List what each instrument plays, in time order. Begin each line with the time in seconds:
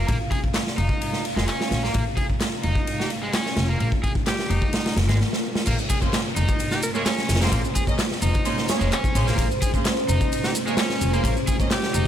Already playing: ambient pad G#3 C#4 F5
0.08 upright bass A#1, overdriven electric guitar A#3, kick, ride
0.31 overdriven electric guitar G#4, kick, ride
0.44 kick
0.54 snare, clap, ride
0.67 snare
0.78 upright bass F1, overdriven electric guitar D#4, ride
0.89 kick
1.01 ride
1.13 snare
1.25 ride
1.36 upright bass F1, overdriven electric guitar G#3, snare
1.47 overdriven electric guitar C#4, clap, ride
1.61 snare
1.71 upright bass A#1, snare, ride
1.83 overdriven electric guitar A#3, snare
1.94 upright bass A#1, overdriven electric guitar A#3, kick, ride
2.17 overdriven electric guitar G#4, kick, ride
2.30 kick
2.40 snare, clap, ride
2.63 upright bass F1, overdriven electric guitar D#4, ride
2.75 kick
2.87 ride
2.99 alto saxophone G4, snare
3.10 ride
3.23 overdriven electric guitar G#3
3.33 overdriven electric guitar C#4, snare, clap, ride
3.46 snare
3.57 upright bass F1, snare, ride
3.69 overdriven electric guitar A#3
3.80 upright bass A#1, overdriven electric guitar A#3, ride
3.92 kick
4.03 overdriven electric guitar G#4, kick, ride
4.15 kick
4.26 alto saxophone G4, snare, clap, ride
4.39 snare
4.50 upright bass F1, overdriven electric guitar D#4, ride
4.62 kick
4.73 snare, ride, swell
4.86 snare, ride
4.97 upright bass F1, snare, ride
5.09 upright bass G#1, overdriven electric guitar G#3, snare, ride
5.21 snare
5.33 snare
5.55 snare
5.66 upright bass A#1, ambient pad G#3 C#4 C5, overdriven electric guitar A#3, kick, crash, ride, downlifter, shaker
5.79 shaker
5.90 overdriven electric guitar G#4, kick, ride, shaker
6.01 string section A#3 C#4 G#4 C5, kick, shaker
6.13 snare, clap, ride, shaker
6.36 upright bass F1, overdriven electric guitar D#4, ride, shaker
6.48 kick, shaker
6.59 ride, shaker
6.71 alto saxophone G4, snare, shaker
6.82 alto saxophone A#4, ride, shaker
6.94 overdriven electric guitar G#3, string section A#3 C#4 G#4 C#5, alto saxophone A#4, shaker
7.06 overdriven electric guitar C#4, snare, clap, ride, shaker
7.18 snare, shaker
7.29 upright bass F1, snare, ride, shaker
7.35 snare, ride
7.41 string section A#3 C#4 G#4 C5, overdriven electric guitar A#3, snare, ride, shaker
7.47 snare, ride
7.52 upright bass A#1, overdriven electric guitar A#3, kick, ride, shaker
7.64 shaker
7.75 overdriven electric guitar G#4, kick, ride, shaker
7.87 string section A#3 C#4 G#4 D#5, kick, shaker
7.99 snare, clap, ride, shaker
8.11 snare
8.22 upright bass F1, overdriven electric guitar D#4, ride, shaker
8.34 kick, shaker
8.45 string section A#3 C#4 G#4 C5, ride, shaker
8.58 snare, shaker
8.68 string section A#3 C#4 G#4 C#5, snare, ride, shaker
8.81 upright bass F1, overdriven electric guitar G#3, shaker
8.92 overdriven electric guitar C#4, clap, ride, shaker
9.04 kick, shaker
9.15 upright bass A#1, string section A#3 C#4 G#4 C5, ride, shaker
9.27 overdriven electric guitar A#3, snare, shaker
9.38 upright bass A#1, overdriven electric guitar A#3, kick, ride, shaker
9.51 shaker
9.62 overdriven electric guitar G#4, kick, ride, shaker
9.73 string section A#3 C#4 G#4 C5, kick, shaker
9.85 snare, clap, ride, shaker
10.09 upright bass F1, overdriven electric guitar D#4, ride, shaker
10.21 kick, shaker
10.32 ride, shaker
10.44 alto saxophone G4, snare, shaker
10.55 ride, shaker
10.66 overdriven electric guitar G#3, string section A#3 C#4 G#4 C#5, shaker
10.77 overdriven electric guitar C#4, snare, clap, ride, shaker
10.90 snare, shaker
11.01 upright bass F1, ride, shaker
11.13 string section A#3 C#4 G#4 C5, overdriven electric guitar A#3, ride, shaker
11.24 upright bass A#1, overdriven electric guitar A#3, kick, ride, shaker
11.37 shaker
11.47 overdriven electric guitar G#4, kick, ride, shaker
11.60 string section A#3 C#4 G#4 D#5, kick, shaker
11.71 alto saxophone G4, snare, clap, ride, shaker
11.83 snare
11.94 upright bass F1, overdriven electric guitar D#4, ride, shaker